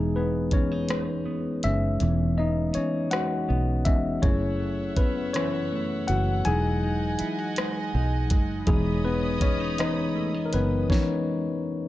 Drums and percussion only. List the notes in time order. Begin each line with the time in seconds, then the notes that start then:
0.51 kick, closed hi-hat
0.89 cross-stick, closed hi-hat
1.63 closed hi-hat
2.00 closed hi-hat
2.74 closed hi-hat
3.11 cross-stick, closed hi-hat
3.85 kick, closed hi-hat
4.23 kick, closed hi-hat
4.96 kick, closed hi-hat
5.34 cross-stick, closed hi-hat
6.08 closed hi-hat
6.45 closed hi-hat
7.19 closed hi-hat
7.56 cross-stick, closed hi-hat
8.30 kick, closed hi-hat
8.67 kick, closed hi-hat
9.41 kick, closed hi-hat
9.78 cross-stick, closed hi-hat
10.53 closed hi-hat
10.90 kick, snare